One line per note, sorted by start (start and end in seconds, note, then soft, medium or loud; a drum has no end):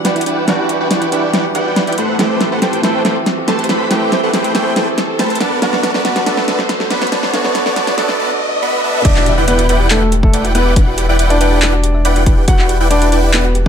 0.00 1.96 E1 medium
0.00 0.46 E3 medium
0.00 5.37 E3 medium
0.00 0.47 G3 medium
0.00 1.94 G3 medium
0.00 0.48 D4 medium
0.00 1.95 E4 medium
0.00 0.50 F#4 medium
0.00 0.46 G4 medium
0.00 1.94 F#5 medium
0.00 riser medium
0.05 0.24 E4 medium
0.05 0.24 B4 medium
0.05 0.24 D5 medium
0.05 0.10 D5 medium
0.05 0.24 F#5 medium
0.05 0.24 G5 medium
0.05 snare medium
0.05 closed hi-hat medium
0.16 0.23 E4 medium
0.16 closed hi-hat soft
0.21 closed hi-hat medium
0.26 0.31 D4 medium
0.26 0.45 E4 medium
0.26 0.45 B4 medium
0.26 0.45 D5 medium
0.26 0.45 F#5 medium
0.26 0.45 G5 medium
0.26 closed hi-hat medium
0.37 0.42 G4 medium
0.46 1.09 E3 medium
0.46 1.09 G3 medium
0.46 0.53 D4 medium
0.46 1.10 D4 medium
0.46 0.78 E4 medium
0.46 0.78 B4 medium
0.46 0.78 D5 medium
0.46 0.78 F#5 medium
0.46 0.78 G5 loud
0.46 snare medium
0.46 closed hi-hat medium
0.50 1.11 F#4 medium
0.59 0.63 G4 loud
0.69 0.74 G4 medium
0.69 closed hi-hat medium
0.80 0.88 E4 loud
0.80 0.85 F#4 medium
0.80 0.88 B4 medium
0.80 0.88 D5 medium
0.80 0.88 F#5 medium
0.80 0.88 G5 loud
0.91 1.10 E4 medium
0.91 1.10 B4 medium
0.91 1.10 D5 medium
0.91 0.95 D5 medium
0.91 1.10 F#5 medium
0.91 1.10 G5 medium
0.91 snare medium
0.91 closed hi-hat medium
1.02 1.08 E4 medium
1.02 closed hi-hat medium
1.10 1.96 E3 medium
1.10 1.96 G3 medium
1.10 1.17 D4 medium
1.10 1.97 D4 medium
1.10 1.31 E4 loud
1.10 1.31 B4 medium
1.10 1.31 D5 medium
1.10 1.31 F#5 medium
1.10 1.31 G5 loud
1.10 closed hi-hat medium
1.14 1.98 G4 medium
1.23 1.28 G4 medium
1.33 1.38 D4 medium
1.33 1.45 E4 medium
1.33 1.45 B4 medium
1.33 1.45 D5 medium
1.33 1.45 F#5 medium
1.33 1.45 G5 medium
1.33 snare medium
1.33 closed hi-hat medium
1.44 1.49 G4 loud
1.55 1.85 E4 medium
1.55 1.60 G4 medium
1.55 1.85 B4 medium
1.55 1.85 D5 medium
1.55 1.85 F#5 medium
1.55 1.85 G5 medium
1.55 closed hi-hat medium
1.66 1.70 F#4 medium
1.76 1.81 D5 medium
1.76 snare medium
1.76 closed hi-hat medium
1.87 1.94 E4 medium
1.87 1.96 E4 medium
1.87 1.96 B4 medium
1.87 1.96 D5 medium
1.87 1.96 F#5 medium
1.87 1.96 G5 medium
1.87 closed hi-hat soft
1.93 closed hi-hat medium
1.98 5.39 A1 medium
1.98 2.17 A3 medium
1.98 8.15 A3 medium
1.98 5.37 C4 medium
1.98 2.03 E4 medium
1.98 5.37 G4 medium
1.98 2.17 A4 medium
1.98 2.17 B4 medium
1.98 2.17 C5 medium
1.98 2.17 F#5 medium
1.98 closed hi-hat medium
2.09 2.13 C5 medium
2.17 2.80 E3 medium
2.17 2.81 A3 medium
2.17 2.49 A3 medium
2.17 2.81 C4 medium
2.17 2.24 E4 medium
2.17 2.49 A4 medium
2.17 2.49 B4 medium
2.17 2.49 C5 medium
2.17 2.49 G5 loud
2.17 snare medium
2.17 closed hi-hat medium
2.21 2.82 G4 medium
2.30 2.35 C5 loud
2.41 2.45 C5 medium
2.41 snare medium
2.41 closed hi-hat medium
2.52 2.60 A3 loud
2.52 2.60 A4 medium
2.52 2.56 A4 medium
2.52 2.60 B4 medium
2.52 2.60 C5 medium
2.52 2.60 F#5 loud
2.62 2.81 A3 medium
2.62 2.81 A4 medium
2.62 2.81 B4 medium
2.62 2.81 C5 medium
2.62 2.67 G5 medium
2.62 2.81 G5 medium
2.62 snare medium
2.62 closed hi-hat medium
2.73 2.80 G4 medium
2.73 closed hi-hat medium
2.81 3.87 E3 medium
2.81 3.88 A3 medium
2.81 3.03 A3 loud
2.81 3.88 C4 medium
2.81 2.88 E4 medium
2.81 3.03 A4 medium
2.81 3.03 B4 medium
2.81 3.02 C5 medium
2.81 3.03 G5 loud
2.81 snare medium
2.81 closed hi-hat medium
2.85 3.89 A4 medium
2.95 2.99 C5 medium
3.05 3.17 A3 medium
3.05 3.10 E4 medium
3.05 3.17 A4 medium
3.05 3.17 B4 medium
3.05 3.17 C5 medium
3.05 3.17 G5 loud
3.05 snare medium
3.05 closed hi-hat medium
3.16 3.20 C5 loud
3.26 3.31 C5 medium
3.26 snare medium
3.26 closed hi-hat medium
3.37 3.42 A4 medium
3.48 3.67 A3 medium
3.48 3.67 A4 medium
3.48 3.67 B4 medium
3.48 3.67 C5 medium
3.48 3.52 G5 medium
3.48 3.67 A5 loud
3.48 snare medium
3.48 closed hi-hat medium
3.59 3.65 G4 medium
3.59 closed hi-hat soft
3.64 closed hi-hat medium
3.69 3.88 A3 medium
3.69 3.74 E4 medium
3.69 3.88 A4 medium
3.69 3.88 B4 medium
3.69 3.88 C5 medium
3.69 3.88 B5 medium
3.69 snare medium
3.69 closed hi-hat medium
3.80 3.85 C5 medium
3.89 4.51 E3 medium
3.89 4.52 A3 medium
3.89 4.21 A3 medium
3.89 4.53 C4 medium
3.89 3.95 E4 medium
3.89 4.53 G4 medium
3.89 4.21 A4 medium
3.89 4.21 B4 medium
3.89 4.21 C5 medium
3.89 4.21 G5 loud
3.89 snare medium
3.89 closed hi-hat medium
4.02 4.06 C5 loud
4.12 4.17 C5 medium
4.12 snare medium
4.12 closed hi-hat medium
4.23 4.31 A3 loud
4.23 4.31 A4 medium
4.23 4.28 A4 medium
4.23 4.31 B4 medium
4.23 4.31 C5 loud
4.23 4.31 F#5 loud
4.33 4.52 A3 medium
4.33 4.52 A4 medium
4.33 4.53 B4 medium
4.33 4.52 C5 medium
4.33 4.38 G5 medium
4.33 4.52 G5 medium
4.33 snare medium
4.33 closed hi-hat medium
4.44 4.51 G4 medium
4.44 closed hi-hat medium
4.53 5.38 E3 medium
4.53 5.39 A3 medium
4.53 4.74 A3 medium
4.53 5.40 C4 medium
4.53 4.60 E4 medium
4.53 4.74 A4 medium
4.53 4.74 B4 medium
4.53 4.74 C5 medium
4.53 4.74 G5 loud
4.53 snare loud
4.53 closed hi-hat medium
4.57 5.40 A4 medium
4.66 4.70 C5 medium
4.76 4.88 A3 medium
4.76 4.81 E4 medium
4.76 4.88 A4 medium
4.76 4.88 B4 medium
4.76 4.88 C5 medium
4.76 4.88 G5 medium
4.76 snare medium
4.76 closed hi-hat medium
4.87 4.92 C5 loud
4.98 5.03 C5 medium
4.98 snare medium
4.98 closed hi-hat medium
5.09 5.13 A4 medium
5.19 5.38 A3 medium
5.19 5.38 A4 medium
5.19 5.38 B4 medium
5.19 5.38 C5 medium
5.19 5.24 G5 medium
5.19 5.38 A5 loud
5.19 snare medium
5.19 closed hi-hat medium
5.30 5.37 G4 medium
5.30 closed hi-hat soft
5.35 closed hi-hat medium
5.40 8.19 B1 medium
5.40 8.16 D3 medium
5.40 5.60 B3 medium
5.40 8.16 B3 medium
5.40 5.45 D4 medium
5.40 8.16 F#4 medium
5.40 5.60 B4 medium
5.40 5.60 D5 medium
5.40 5.60 F#5 medium
5.40 5.60 A5 medium
5.40 snare medium
5.40 closed hi-hat medium
5.52 5.56 B4 medium
5.60 6.23 D3 medium
5.60 6.24 A3 medium
5.60 5.92 B3 medium
5.60 6.24 B3 medium
5.60 5.67 D4 medium
5.60 5.92 B4 medium
5.60 5.92 D5 medium
5.60 5.92 F#5 medium
5.60 5.92 A5 loud
5.60 snare medium
5.60 closed hi-hat medium
5.64 6.25 F#4 medium
5.73 5.78 B4 loud
5.73 snare medium
5.83 5.88 B4 medium
5.83 snare medium
5.83 closed hi-hat medium
5.94 6.02 B3 loud
5.94 5.99 A4 medium
5.94 6.03 B4 medium
5.94 6.02 D5 medium
5.94 6.02 F#5 medium
5.94 6.02 A5 loud
5.94 snare medium
6.05 6.24 B3 medium
6.05 6.24 B4 medium
6.05 6.24 D5 medium
6.05 6.24 F#5 medium
6.05 6.10 F#5 medium
6.05 6.24 A5 medium
6.05 snare medium
6.05 closed hi-hat medium
6.16 6.23 F#4 medium
6.16 snare medium
6.16 closed hi-hat medium
6.24 7.30 D3 medium
6.24 7.31 A3 medium
6.24 6.45 B3 loud
6.24 7.31 B3 medium
6.24 6.31 D4 medium
6.24 7.32 A4 medium
6.24 6.45 B4 medium
6.24 6.45 D5 medium
6.24 6.45 F#5 medium
6.24 6.45 A5 loud
6.24 snare loud
6.24 closed hi-hat medium
6.37 6.42 B4 medium
6.37 snare medium
6.48 6.59 B3 medium
6.48 6.53 D4 medium
6.48 6.59 B4 medium
6.48 6.59 D5 medium
6.48 6.59 F#5 medium
6.48 6.59 A5 medium
6.48 snare medium
6.48 closed hi-hat medium
6.59 6.63 B4 loud
6.59 snare medium
6.69 6.74 B4 medium
6.69 snare loud
6.69 closed hi-hat medium
6.80 6.85 A4 medium
6.80 snare medium
6.91 7.10 B3 medium
6.91 7.10 B4 medium
6.91 7.10 D5 medium
6.91 6.95 F#5 medium
6.91 7.10 F#5 medium
6.91 7.10 B5 loud
6.91 snare loud
6.91 closed hi-hat medium
7.02 7.08 F#4 medium
7.02 snare medium
7.02 closed hi-hat soft
7.07 closed hi-hat medium
7.12 7.31 B3 medium
7.12 7.17 D4 medium
7.12 7.31 B4 medium
7.12 7.31 D5 medium
7.12 7.31 F#5 medium
7.12 7.31 A5 medium
7.12 snare loud
7.12 closed hi-hat medium
7.23 7.28 B4 medium
7.23 snare medium
7.31 7.94 D3 medium
7.31 7.95 A3 medium
7.31 7.63 B3 medium
7.31 7.96 B3 medium
7.31 7.38 D4 medium
7.31 7.63 B4 medium
7.31 7.63 D5 medium
7.31 7.63 F#5 medium
7.31 7.63 A5 loud
7.31 snare loud
7.31 closed hi-hat medium
7.36 7.96 F#4 medium
7.45 7.49 B4 loud
7.45 snare medium
7.55 7.60 B4 medium
7.55 snare loud
7.55 closed hi-hat medium
7.66 7.74 B3 loud
7.66 7.70 A4 medium
7.66 7.74 B4 medium
7.66 7.74 D5 loud
7.66 7.74 F#5 medium
7.66 7.74 A5 loud
7.66 snare medium
7.76 7.95 B3 medium
7.76 7.95 B4 medium
7.76 7.95 D5 medium
7.76 7.81 F#5 medium
7.76 7.95 F#5 medium
7.76 7.95 A5 medium
7.76 snare loud
7.76 closed hi-hat medium
7.87 7.94 F#4 medium
7.87 snare loud
7.87 closed hi-hat medium
7.97 8.19 D3 medium
7.97 8.19 A3 medium
7.97 8.17 B3 medium
7.97 8.19 B3 medium
7.97 8.03 D4 medium
7.97 8.20 A4 medium
7.97 8.17 B4 medium
7.97 8.17 D5 medium
7.97 8.17 F#5 medium
7.97 8.17 A5 loud
7.97 snare loud
7.97 closed hi-hat medium
8.09 8.13 B4 medium
8.09 snare medium
8.19 8.31 B3 medium
8.19 8.31 B4 medium
8.19 8.31 D5 medium
8.19 8.31 F#5 medium
8.19 8.31 A5 loud
8.62 8.81 B3 medium
8.62 8.81 B4 medium
8.62 8.81 D5 medium
8.62 8.81 F#5 medium
8.62 8.81 B5 loud
8.84 9.02 B3 medium
8.84 9.02 B4 medium
8.84 9.02 D5 medium
8.84 9.02 F#5 medium
8.84 9.02 A5 medium
9.05 13.68 E1 medium
9.05 9.29 D4 medium
9.05 9.10 D4 medium
9.05 9.35 E4 medium
9.05 9.29 D5 loud
9.05 kick loud
9.05 closed hi-hat medium
9.05 crash loud
9.05 impact medium
9.16 9.19 F#4 loud
9.16 clap soft
9.26 9.33 G4 medium
9.26 closed hi-hat medium
9.37 9.45 E4 loud
9.37 9.45 B4 medium
9.37 9.45 D5 medium
9.37 9.44 E5 medium
9.37 9.45 F#5 medium
9.37 9.45 G5 loud
9.48 9.72 B3 medium
9.48 9.67 E4 medium
9.48 9.72 B4 loud
9.48 9.67 B4 medium
9.48 9.53 D5 medium
9.48 9.67 D5 medium
9.48 9.67 F#5 medium
9.48 9.67 G5 medium
9.48 closed hi-hat medium
9.59 9.63 F#4 medium
9.59 closed hi-hat medium
9.69 9.88 E4 loud
9.69 9.74 B4 loud
9.69 9.88 B4 medium
9.69 9.88 D5 medium
9.69 9.88 F#5 medium
9.69 9.88 G5 loud
9.69 closed hi-hat medium
9.80 9.85 G4 loud
9.91 10.09 A3 medium
9.91 9.95 D4 medium
9.91 10.02 E4 medium
9.91 10.09 A4 medium
9.91 10.02 B4 medium
9.91 10.02 D5 medium
9.91 10.02 F#5 medium
9.91 10.02 G5 medium
9.91 clap loud
9.91 closed hi-hat medium
10.02 10.04 F#4 loud
10.12 10.19 G4 medium
10.12 closed hi-hat medium
10.23 10.41 A3 medium
10.23 10.41 A4 medium
10.23 10.30 E5 medium
10.23 kick loud
10.33 10.53 E4 medium
10.33 10.53 B4 medium
10.33 10.38 D5 medium
10.33 10.53 D5 medium
10.33 10.53 F#5 medium
10.33 10.53 G5 loud
10.33 closed hi-hat medium
10.44 10.49 F#4 medium
10.44 closed hi-hat medium
10.55 10.73 B3 medium
10.55 10.74 E4 medium
10.55 10.73 B4 loud
10.55 10.60 B4 loud
10.55 10.74 B4 medium
10.55 10.74 D5 medium
10.55 10.74 F#5 medium
10.55 10.74 G5 medium
10.55 closed hi-hat medium
10.66 10.70 G4 loud
10.76 10.81 D4 medium
10.76 11.06 E4 medium
10.76 11.06 F#5 medium
10.76 11.06 G5 loud
10.76 kick loud
10.76 closed hi-hat medium
10.87 10.90 F#4 loud
10.98 11.05 G4 medium
10.98 closed hi-hat medium
11.09 11.17 E4 loud
11.09 11.17 B4 medium
11.09 11.17 D5 medium
11.09 11.15 E5 medium
11.09 11.17 F#5 medium
11.09 11.17 G5 loud
11.19 11.38 E4 medium
11.19 11.38 B4 medium
11.19 11.24 D5 medium
11.19 11.38 D5 medium
11.19 11.38 F#5 medium
11.19 11.38 G5 medium
11.19 closed hi-hat medium
11.30 12.39 D4 medium
11.30 11.35 F#4 medium
11.30 12.39 D5 medium
11.30 closed hi-hat medium
11.40 11.60 E4 loud
11.40 11.45 B4 loud
11.40 11.60 B4 medium
11.40 11.60 D5 medium
11.40 11.60 F#5 medium
11.40 11.60 G5 loud
11.40 closed hi-hat medium
11.52 11.56 G4 loud
11.62 11.67 D4 medium
11.62 11.74 E4 medium
11.62 11.74 B4 medium
11.62 11.74 D5 medium
11.62 11.74 F#5 medium
11.62 11.74 G5 loud
11.62 clap loud
11.62 closed hi-hat medium
11.73 11.76 F#4 loud
11.83 11.91 G4 medium
11.83 closed hi-hat medium
11.95 12.01 E5 medium
12.05 12.24 E4 medium
12.05 12.24 B4 medium
12.05 12.24 D5 medium
12.05 12.10 D5 medium
12.05 12.24 F#5 medium
12.05 12.24 G5 loud
12.05 closed hi-hat medium
12.16 12.20 F#4 medium
12.16 closed hi-hat medium
12.26 12.45 E4 medium
12.26 12.31 B4 loud
12.26 12.45 D5 medium
12.26 kick loud
12.26 closed hi-hat medium
12.37 12.42 G4 loud
12.48 12.53 D4 medium
12.48 12.78 E4 medium
12.48 12.72 F#4 medium
12.48 12.78 B4 medium
12.48 12.78 D5 medium
12.48 12.72 F#5 loud
12.48 12.78 F#5 medium
12.48 12.78 G5 loud
12.48 kick loud
12.48 closed hi-hat medium
12.59 12.62 F#4 loud
12.59 clap soft
12.69 12.76 G4 medium
12.69 closed hi-hat medium
12.80 12.88 E4 loud
12.80 12.88 B4 loud
12.80 12.88 D5 medium
12.80 12.87 E5 medium
12.80 12.88 F#5 medium
12.80 12.88 G5 loud
12.90 13.14 D4 medium
12.90 13.10 E4 medium
12.90 13.10 B4 medium
12.90 13.15 D5 loud
12.90 12.95 D5 medium
12.90 13.10 D5 medium
12.90 13.10 F#5 medium
12.90 13.10 G5 medium
12.90 closed hi-hat medium
13.02 13.06 F#4 medium
13.02 closed hi-hat medium
13.12 13.31 E4 loud
13.12 13.17 B4 loud
13.12 13.31 B4 medium
13.12 13.31 D5 medium
13.12 13.31 F#5 medium
13.12 13.31 G5 loud
13.12 closed hi-hat medium
13.23 13.28 G4 loud
13.33 13.51 B3 medium
13.33 13.38 D4 medium
13.33 13.45 E4 medium
13.33 13.51 B4 loud
13.33 13.45 B4 medium
13.33 13.45 F#5 medium
13.33 13.45 G5 medium
13.33 clap loud
13.33 closed hi-hat medium
13.45 13.47 F#4 loud
13.55 13.62 G4 medium
13.55 closed hi-hat medium